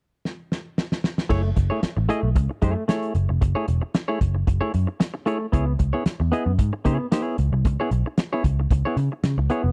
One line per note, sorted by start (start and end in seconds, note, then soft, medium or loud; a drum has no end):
0.25 snare soft
0.52 snare medium
0.78 snare medium
0.92 snare medium
1.04 snare medium
1.18 snare medium
1.29 1.51 F#1 medium
1.29 1.49 A3 medium
1.29 1.44 E4 medium
1.29 1.43 G#4 medium
1.29 1.43 C#5 medium
1.29 kick medium
1.29 crash medium
1.44 muted clean electric guitar stroke soft
1.56 1.68 F#1 medium
1.56 muted clean electric guitar stroke soft
1.56 kick medium
1.56 closed hi-hat medium
1.70 1.81 A3 medium
1.70 1.82 E4 medium
1.70 1.82 G#4 medium
1.70 1.83 C#5 medium
1.83 muted picked electric bass stroke soft
1.83 snare medium
1.83 closed hi-hat medium
1.97 2.07 A1 medium
1.97 muted clean electric guitar stroke soft
2.09 2.28 A3 medium
2.09 2.23 E4 medium
2.09 2.22 G#4 medium
2.09 2.23 D#5 loud
2.09 closed hi-hat medium
2.23 2.36 B1 medium
2.23 muted clean electric guitar stroke soft
2.35 2.47 C#2 medium
2.35 muted clean electric guitar stroke soft
2.35 kick medium
2.35 closed hi-hat medium
2.49 muted clean electric guitar stroke soft
2.62 2.74 F#2 medium
2.62 2.83 A3 medium
2.62 2.76 E4 medium
2.62 2.75 G#4 medium
2.62 2.74 C#5 medium
2.62 kick medium
2.62 closed hi-hat medium
2.76 muted clean electric guitar stroke soft
2.88 3.13 A3 medium
2.88 3.13 E4 medium
2.88 3.13 G#4 medium
2.88 3.14 C#5 medium
2.88 snare loud
2.88 closed hi-hat loud
3.03 closed hi-hat soft
3.15 3.26 F#1 medium
3.15 muted clean electric guitar stroke soft
3.15 closed hi-hat medium
3.29 3.39 F1 medium
3.29 muted clean electric guitar stroke soft
3.41 3.53 F#1 loud
3.41 muted clean electric guitar stroke soft
3.41 kick loud
3.41 closed hi-hat medium
3.55 3.66 A3 medium
3.55 3.67 E4 medium
3.55 3.67 G#4 medium
3.55 3.68 C#5 medium
3.68 3.79 E1 medium
3.68 closed hi-hat medium
3.82 muted clean electric guitar stroke soft
3.94 muted clean electric guitar stroke soft
3.94 snare medium
3.94 closed hi-hat medium
4.08 4.19 A3 medium
4.08 4.20 E4 medium
4.08 4.21 G#4 medium
4.08 4.21 C#5 medium
4.21 4.42 F#1 medium
4.21 kick medium
4.21 closed hi-hat medium
4.35 muted clean electric guitar stroke soft
4.47 4.59 F#1 loud
4.47 muted clean electric guitar stroke soft
4.47 kick medium
4.47 closed hi-hat medium
4.61 4.73 A3 medium
4.61 4.73 E4 medium
4.61 4.73 G#4 medium
4.61 4.74 C#5 medium
4.74 4.85 F#2 medium
4.74 closed hi-hat medium
4.87 muted clean electric guitar stroke soft
5.00 muted clean electric guitar stroke soft
5.00 snare loud
5.00 closed hi-hat loud
5.14 muted clean electric guitar stroke soft
5.26 5.45 A3 medium
5.26 5.40 E4 medium
5.26 5.39 G#4 medium
5.26 5.39 C#5 medium
5.26 closed hi-hat medium
5.40 muted clean electric guitar stroke soft
5.52 5.74 C#2 loud
5.52 5.72 B3 medium
5.52 5.67 E4 medium
5.52 5.66 G#4 medium
5.52 5.65 C#5 medium
5.52 kick loud
5.52 closed hi-hat medium
5.67 muted clean electric guitar stroke soft
5.79 5.91 C#2 medium
5.79 muted clean electric guitar stroke soft
5.79 kick medium
5.79 closed hi-hat medium
5.93 6.04 B3 medium
5.93 6.05 E4 medium
5.93 6.05 G#4 medium
5.93 6.06 C#5 medium
6.06 muted picked electric bass stroke soft
6.06 snare medium
6.06 closed hi-hat medium
6.20 6.30 E2 medium
6.20 muted clean electric guitar stroke soft
6.32 6.51 B3 medium
6.32 6.46 E4 medium
6.32 6.46 G#4 medium
6.32 6.46 D#5 medium
6.32 closed hi-hat medium
6.46 6.56 F#2 medium
6.46 muted clean electric guitar stroke soft
6.58 6.70 G#2 medium
6.58 muted clean electric guitar stroke soft
6.58 kick medium
6.58 closed hi-hat medium
6.73 muted clean electric guitar stroke medium
6.85 6.97 C#3 medium
6.85 7.06 B3 medium
6.85 7.00 E4 medium
6.85 6.99 G#4 loud
6.85 6.98 C#5 medium
6.85 kick medium
6.85 closed hi-hat medium
7.00 muted clean electric guitar stroke soft
7.12 7.36 B3 medium
7.12 7.37 E4 medium
7.12 7.37 G#4 medium
7.12 7.37 C#5 medium
7.12 snare loud
7.12 closed hi-hat loud
7.38 7.50 C#2 medium
7.38 closed hi-hat medium
7.52 7.65 C2 medium
7.52 muted clean electric guitar stroke soft
7.65 7.76 C#2 loud
7.65 muted clean electric guitar stroke soft
7.65 kick loud
7.65 closed hi-hat medium
7.80 7.91 B3 medium
7.80 7.91 E4 medium
7.80 7.91 G#4 medium
7.80 7.92 C#5 medium
7.91 8.02 B1 medium
7.91 muted clean electric guitar stroke soft
7.91 closed hi-hat medium
8.06 muted clean electric guitar stroke medium
8.18 muted clean electric guitar stroke soft
8.18 snare loud
8.18 closed hi-hat medium
8.33 8.44 B3 medium
8.33 8.44 E4 medium
8.33 8.45 G#4 medium
8.33 8.45 C#5 medium
8.44 8.65 C#2 medium
8.44 kick loud
8.44 closed hi-hat medium
8.60 muted clean electric guitar stroke soft
8.71 8.82 C#2 medium
8.71 muted clean electric guitar stroke soft
8.71 kick loud
8.71 closed hi-hat medium
8.85 8.97 B3 medium
8.85 8.98 E4 medium
8.85 8.98 G#4 medium
8.85 8.98 C#5 medium
8.97 9.08 C#3 medium
8.97 closed hi-hat medium
9.12 muted clean electric guitar stroke soft
9.24 9.35 C#3 medium
9.24 snare loud
9.24 closed hi-hat loud
9.38 9.47 C#2 medium
9.38 muted clean electric guitar stroke soft
9.50 9.69 B3 medium
9.50 9.64 E4 medium
9.50 9.64 G#4 medium
9.50 9.63 C#5 medium
9.50 closed hi-hat medium
9.64 9.72 F1 medium
9.64 muted clean electric guitar stroke soft